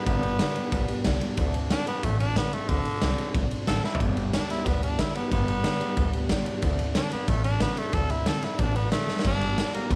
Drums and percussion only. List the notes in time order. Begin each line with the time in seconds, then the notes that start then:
0.06 kick, ride
0.23 ride
0.39 snare, ride
0.55 ride
0.72 kick, ride
0.88 ride
1.04 kick, snare, ride
1.21 ride
1.37 kick, ride
1.54 ride
1.70 snare, ride
1.87 ride
2.03 kick, ride
2.20 ride
2.36 kick, snare, ride
2.53 ride
2.69 kick, ride
2.85 ride
3.02 snare, ride
3.18 ride
3.34 kick, ride
3.51 ride
3.67 snare, ride
3.84 snare
3.95 floor tom
4.00 kick, ride
4.17 ride
4.33 snare, ride
4.50 snare, ride
4.66 kick, ride
4.83 ride
4.99 kick, snare, ride
5.15 ride
5.32 kick, ride
5.48 ride
5.64 snare, ride
5.81 ride
5.97 kick, ride
6.13 ride
6.29 kick, snare, ride
6.46 ride
6.62 kick, ride
6.79 ride
6.95 snare, ride
7.11 ride
7.28 kick, ride
7.44 ride
7.60 kick, snare, ride
7.77 ride
7.93 kick, ride
8.10 ride
8.26 snare, ride
8.42 snare, ride
8.59 kick, ride
8.76 ride
8.92 snare, ride
9.08 snare
9.19 snare
9.25 kick, crash
9.41 ride
9.58 snare, ride
9.74 ride
9.91 kick, ride